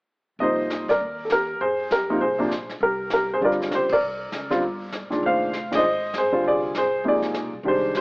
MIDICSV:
0, 0, Header, 1, 5, 480
1, 0, Start_track
1, 0, Tempo, 301811
1, 635, Time_signature, 4, 2, 24, 8
1, 12736, End_track
2, 0, Start_track
2, 0, Title_t, "Upright piano"
2, 0, Program_c, 0, 0
2, 635, Note_on_c, 0, 48, 54
2, 637, Note_on_c, 0, 53, 52
2, 640, Note_on_c, 0, 75, 87
2, 655, Note_on_c, 0, 58, 48
2, 658, Note_on_c, 0, 63, 63
2, 681, Note_on_c, 0, 72, 68
2, 1349, Note_off_c, 0, 48, 0
2, 1350, Note_off_c, 0, 53, 0
2, 1356, Note_off_c, 0, 75, 0
2, 1359, Note_off_c, 0, 58, 0
2, 1360, Note_off_c, 0, 63, 0
2, 1378, Note_off_c, 0, 72, 0
2, 1417, Note_on_c, 0, 74, 83
2, 1441, Note_on_c, 0, 70, 69
2, 1965, Note_off_c, 0, 70, 0
2, 1987, Note_on_c, 0, 69, 60
2, 2009, Note_off_c, 0, 74, 0
2, 2074, Note_off_c, 0, 69, 0
2, 2103, Note_on_c, 0, 70, 87
2, 2115, Note_on_c, 0, 67, 62
2, 2542, Note_off_c, 0, 67, 0
2, 2560, Note_on_c, 0, 72, 79
2, 2572, Note_on_c, 0, 68, 65
2, 2582, Note_off_c, 0, 70, 0
2, 3010, Note_off_c, 0, 68, 0
2, 3051, Note_off_c, 0, 72, 0
2, 3058, Note_on_c, 0, 70, 80
2, 3076, Note_on_c, 0, 67, 65
2, 3336, Note_on_c, 0, 48, 70
2, 3340, Note_on_c, 0, 53, 61
2, 3343, Note_on_c, 0, 58, 63
2, 3345, Note_on_c, 0, 63, 79
2, 3499, Note_off_c, 0, 48, 0
2, 3502, Note_off_c, 0, 53, 0
2, 3503, Note_off_c, 0, 58, 0
2, 3503, Note_off_c, 0, 67, 0
2, 3504, Note_off_c, 0, 63, 0
2, 3515, Note_on_c, 0, 72, 81
2, 3527, Note_on_c, 0, 68, 62
2, 3540, Note_off_c, 0, 70, 0
2, 3792, Note_on_c, 0, 48, 67
2, 3796, Note_on_c, 0, 53, 67
2, 3811, Note_on_c, 0, 58, 61
2, 3814, Note_on_c, 0, 62, 74
2, 3967, Note_off_c, 0, 48, 0
2, 3969, Note_off_c, 0, 53, 0
2, 3977, Note_off_c, 0, 58, 0
2, 3978, Note_off_c, 0, 62, 0
2, 4233, Note_off_c, 0, 72, 0
2, 4239, Note_off_c, 0, 68, 0
2, 4500, Note_on_c, 0, 70, 88
2, 4506, Note_on_c, 0, 67, 66
2, 4937, Note_off_c, 0, 67, 0
2, 4962, Note_off_c, 0, 70, 0
2, 4986, Note_on_c, 0, 70, 87
2, 4991, Note_on_c, 0, 67, 68
2, 5243, Note_off_c, 0, 70, 0
2, 5246, Note_off_c, 0, 67, 0
2, 5304, Note_on_c, 0, 72, 80
2, 5314, Note_on_c, 0, 68, 67
2, 5375, Note_off_c, 0, 72, 0
2, 5383, Note_off_c, 0, 68, 0
2, 5424, Note_on_c, 0, 50, 66
2, 5434, Note_on_c, 0, 55, 57
2, 5443, Note_on_c, 0, 60, 55
2, 5448, Note_on_c, 0, 65, 64
2, 5480, Note_on_c, 0, 74, 79
2, 5489, Note_on_c, 0, 70, 67
2, 5909, Note_off_c, 0, 70, 0
2, 5950, Note_off_c, 0, 74, 0
2, 5965, Note_on_c, 0, 72, 90
2, 5971, Note_on_c, 0, 67, 71
2, 6143, Note_off_c, 0, 50, 0
2, 6148, Note_off_c, 0, 55, 0
2, 6152, Note_off_c, 0, 60, 0
2, 6155, Note_off_c, 0, 65, 0
2, 6217, Note_off_c, 0, 67, 0
2, 6240, Note_off_c, 0, 72, 0
2, 6245, Note_on_c, 0, 74, 91
2, 6258, Note_on_c, 0, 70, 68
2, 7161, Note_on_c, 0, 50, 67
2, 7165, Note_on_c, 0, 55, 62
2, 7171, Note_on_c, 0, 60, 63
2, 7178, Note_on_c, 0, 65, 78
2, 7331, Note_off_c, 0, 50, 0
2, 7333, Note_off_c, 0, 55, 0
2, 7336, Note_off_c, 0, 60, 0
2, 7340, Note_off_c, 0, 65, 0
2, 8082, Note_off_c, 0, 74, 0
2, 8088, Note_off_c, 0, 70, 0
2, 8116, Note_on_c, 0, 46, 58
2, 8122, Note_on_c, 0, 51, 51
2, 8129, Note_on_c, 0, 56, 50
2, 8132, Note_on_c, 0, 62, 65
2, 8360, Note_on_c, 0, 72, 71
2, 8371, Note_on_c, 0, 77, 86
2, 8751, Note_off_c, 0, 46, 0
2, 8753, Note_off_c, 0, 51, 0
2, 8757, Note_off_c, 0, 56, 0
2, 8758, Note_off_c, 0, 62, 0
2, 9057, Note_off_c, 0, 72, 0
2, 9063, Note_off_c, 0, 77, 0
2, 9087, Note_on_c, 0, 46, 59
2, 9093, Note_on_c, 0, 51, 55
2, 9102, Note_on_c, 0, 56, 56
2, 9102, Note_on_c, 0, 62, 65
2, 9149, Note_on_c, 0, 75, 106
2, 9159, Note_on_c, 0, 72, 74
2, 9255, Note_off_c, 0, 46, 0
2, 9258, Note_off_c, 0, 51, 0
2, 9262, Note_off_c, 0, 56, 0
2, 9262, Note_off_c, 0, 62, 0
2, 9745, Note_off_c, 0, 72, 0
2, 9804, Note_off_c, 0, 75, 0
2, 9827, Note_on_c, 0, 72, 90
2, 9834, Note_on_c, 0, 68, 70
2, 10055, Note_on_c, 0, 50, 59
2, 10061, Note_on_c, 0, 55, 52
2, 10062, Note_on_c, 0, 60, 50
2, 10072, Note_on_c, 0, 65, 67
2, 10239, Note_off_c, 0, 72, 0
2, 10242, Note_off_c, 0, 68, 0
2, 10298, Note_on_c, 0, 68, 69
2, 10300, Note_on_c, 0, 74, 91
2, 10680, Note_off_c, 0, 50, 0
2, 10683, Note_off_c, 0, 55, 0
2, 10684, Note_off_c, 0, 60, 0
2, 10689, Note_off_c, 0, 65, 0
2, 10714, Note_off_c, 0, 68, 0
2, 10760, Note_off_c, 0, 74, 0
2, 10774, Note_on_c, 0, 68, 68
2, 10781, Note_on_c, 0, 72, 84
2, 11192, Note_off_c, 0, 68, 0
2, 11196, Note_off_c, 0, 72, 0
2, 11203, Note_on_c, 0, 48, 55
2, 11211, Note_on_c, 0, 58, 53
2, 11213, Note_on_c, 0, 53, 49
2, 11216, Note_on_c, 0, 63, 62
2, 11261, Note_on_c, 0, 68, 69
2, 11262, Note_on_c, 0, 74, 88
2, 11913, Note_off_c, 0, 48, 0
2, 11917, Note_off_c, 0, 58, 0
2, 11918, Note_off_c, 0, 53, 0
2, 11919, Note_off_c, 0, 63, 0
2, 11948, Note_off_c, 0, 68, 0
2, 11949, Note_off_c, 0, 74, 0
2, 12157, Note_on_c, 0, 51, 63
2, 12166, Note_on_c, 0, 56, 61
2, 12173, Note_on_c, 0, 62, 60
2, 12178, Note_on_c, 0, 67, 66
2, 12214, Note_on_c, 0, 72, 89
2, 12648, Note_off_c, 0, 67, 0
2, 12652, Note_off_c, 0, 72, 0
2, 12672, Note_on_c, 0, 67, 69
2, 12676, Note_on_c, 0, 72, 92
2, 12736, Note_off_c, 0, 51, 0
2, 12736, Note_off_c, 0, 56, 0
2, 12736, Note_off_c, 0, 62, 0
2, 12736, Note_off_c, 0, 67, 0
2, 12736, Note_off_c, 0, 72, 0
2, 12736, End_track
3, 0, Start_track
3, 0, Title_t, "Upright bass"
3, 0, Program_c, 1, 32
3, 618, Note_on_c, 1, 36, 79
3, 1344, Note_off_c, 1, 36, 0
3, 1404, Note_on_c, 1, 43, 63
3, 1579, Note_off_c, 1, 43, 0
3, 1600, Note_on_c, 1, 39, 82
3, 2509, Note_off_c, 1, 39, 0
3, 2554, Note_on_c, 1, 41, 82
3, 3465, Note_off_c, 1, 41, 0
3, 3513, Note_on_c, 1, 36, 78
3, 3959, Note_off_c, 1, 36, 0
3, 3989, Note_on_c, 1, 34, 74
3, 4437, Note_off_c, 1, 34, 0
3, 4463, Note_on_c, 1, 36, 84
3, 5380, Note_off_c, 1, 36, 0
3, 5434, Note_on_c, 1, 31, 83
3, 5879, Note_off_c, 1, 31, 0
3, 5904, Note_on_c, 1, 37, 76
3, 6354, Note_off_c, 1, 37, 0
3, 6375, Note_on_c, 1, 36, 77
3, 6829, Note_off_c, 1, 36, 0
3, 6874, Note_on_c, 1, 37, 76
3, 7319, Note_off_c, 1, 37, 0
3, 7361, Note_on_c, 1, 31, 81
3, 8076, Note_off_c, 1, 31, 0
3, 8316, Note_on_c, 1, 29, 83
3, 9227, Note_off_c, 1, 29, 0
3, 9278, Note_on_c, 1, 32, 76
3, 9995, Note_off_c, 1, 32, 0
3, 10057, Note_on_c, 1, 31, 67
3, 10226, Note_off_c, 1, 31, 0
3, 10246, Note_on_c, 1, 36, 85
3, 11152, Note_off_c, 1, 36, 0
3, 11192, Note_on_c, 1, 32, 77
3, 11788, Note_off_c, 1, 32, 0
3, 11828, Note_on_c, 1, 36, 60
3, 11968, Note_off_c, 1, 36, 0
3, 11977, Note_on_c, 1, 35, 66
3, 12130, Note_off_c, 1, 35, 0
3, 12139, Note_on_c, 1, 36, 83
3, 12736, Note_off_c, 1, 36, 0
3, 12736, End_track
4, 0, Start_track
4, 0, Title_t, "Muted upright bass strokes"
4, 8109, Note_on_c, 9, 29, 38
4, 8268, Note_off_c, 9, 29, 0
4, 12736, End_track
5, 0, Start_track
5, 0, Title_t, "Drums"
5, 636, Note_on_c, 9, 25, 40
5, 1112, Note_on_c, 9, 44, 55
5, 1115, Note_on_c, 9, 38, 54
5, 1271, Note_off_c, 9, 44, 0
5, 1274, Note_off_c, 9, 38, 0
5, 1405, Note_on_c, 9, 36, 53
5, 1412, Note_on_c, 9, 38, 39
5, 1564, Note_off_c, 9, 36, 0
5, 1571, Note_off_c, 9, 38, 0
5, 1592, Note_off_c, 9, 25, 0
5, 1592, Note_on_c, 9, 25, 49
5, 2059, Note_on_c, 9, 44, 47
5, 2062, Note_on_c, 9, 38, 57
5, 2218, Note_off_c, 9, 44, 0
5, 2221, Note_off_c, 9, 38, 0
5, 2551, Note_off_c, 9, 25, 0
5, 2551, Note_on_c, 9, 25, 38
5, 3032, Note_on_c, 9, 44, 49
5, 3035, Note_on_c, 9, 38, 58
5, 3191, Note_off_c, 9, 44, 0
5, 3194, Note_off_c, 9, 38, 0
5, 3523, Note_off_c, 9, 25, 0
5, 3523, Note_on_c, 9, 25, 46
5, 3997, Note_on_c, 9, 44, 56
5, 4000, Note_on_c, 9, 38, 56
5, 4156, Note_off_c, 9, 44, 0
5, 4159, Note_off_c, 9, 38, 0
5, 4287, Note_on_c, 9, 38, 36
5, 4446, Note_off_c, 9, 38, 0
5, 4457, Note_off_c, 9, 25, 0
5, 4457, Note_on_c, 9, 25, 45
5, 4932, Note_on_c, 9, 44, 48
5, 4935, Note_on_c, 9, 38, 59
5, 5091, Note_off_c, 9, 44, 0
5, 5094, Note_off_c, 9, 38, 0
5, 5432, Note_off_c, 9, 25, 0
5, 5432, Note_on_c, 9, 25, 46
5, 5596, Note_on_c, 9, 38, 28
5, 5753, Note_off_c, 9, 38, 0
5, 5753, Note_on_c, 9, 38, 41
5, 5907, Note_on_c, 9, 44, 50
5, 5911, Note_off_c, 9, 38, 0
5, 5911, Note_on_c, 9, 38, 57
5, 6066, Note_off_c, 9, 44, 0
5, 6070, Note_off_c, 9, 38, 0
5, 6190, Note_on_c, 9, 51, 72
5, 6200, Note_on_c, 9, 36, 84
5, 6349, Note_off_c, 9, 51, 0
5, 6359, Note_off_c, 9, 36, 0
5, 6392, Note_off_c, 9, 25, 0
5, 6392, Note_on_c, 9, 25, 39
5, 6868, Note_on_c, 9, 44, 49
5, 6871, Note_on_c, 9, 38, 56
5, 7027, Note_off_c, 9, 44, 0
5, 7030, Note_off_c, 9, 38, 0
5, 7172, Note_on_c, 9, 38, 35
5, 7331, Note_off_c, 9, 38, 0
5, 7357, Note_off_c, 9, 25, 0
5, 7357, Note_on_c, 9, 25, 46
5, 7830, Note_on_c, 9, 44, 56
5, 7834, Note_on_c, 9, 38, 62
5, 7990, Note_off_c, 9, 44, 0
5, 7993, Note_off_c, 9, 38, 0
5, 8139, Note_on_c, 9, 38, 37
5, 8298, Note_off_c, 9, 38, 0
5, 8318, Note_off_c, 9, 25, 0
5, 8318, Note_on_c, 9, 25, 49
5, 8797, Note_on_c, 9, 44, 49
5, 8800, Note_on_c, 9, 38, 52
5, 8956, Note_off_c, 9, 44, 0
5, 8959, Note_off_c, 9, 38, 0
5, 9099, Note_on_c, 9, 51, 64
5, 9102, Note_on_c, 9, 38, 74
5, 9258, Note_off_c, 9, 51, 0
5, 9262, Note_off_c, 9, 38, 0
5, 9285, Note_off_c, 9, 25, 0
5, 9285, Note_on_c, 9, 25, 47
5, 9754, Note_on_c, 9, 44, 52
5, 9757, Note_on_c, 9, 38, 62
5, 9913, Note_off_c, 9, 44, 0
5, 9916, Note_off_c, 9, 38, 0
5, 10242, Note_off_c, 9, 25, 0
5, 10242, Note_on_c, 9, 25, 42
5, 10726, Note_on_c, 9, 44, 57
5, 10729, Note_on_c, 9, 38, 56
5, 10885, Note_off_c, 9, 44, 0
5, 10888, Note_off_c, 9, 38, 0
5, 11196, Note_off_c, 9, 25, 0
5, 11196, Note_on_c, 9, 25, 48
5, 11483, Note_on_c, 9, 38, 36
5, 11643, Note_off_c, 9, 38, 0
5, 11674, Note_on_c, 9, 44, 59
5, 11678, Note_on_c, 9, 38, 61
5, 11833, Note_off_c, 9, 44, 0
5, 11837, Note_off_c, 9, 38, 0
5, 12152, Note_off_c, 9, 25, 0
5, 12152, Note_on_c, 9, 25, 42
5, 12634, Note_on_c, 9, 44, 51
5, 12637, Note_on_c, 9, 38, 58
5, 12736, Note_off_c, 9, 25, 0
5, 12736, Note_off_c, 9, 38, 0
5, 12736, Note_off_c, 9, 44, 0
5, 12736, End_track
0, 0, End_of_file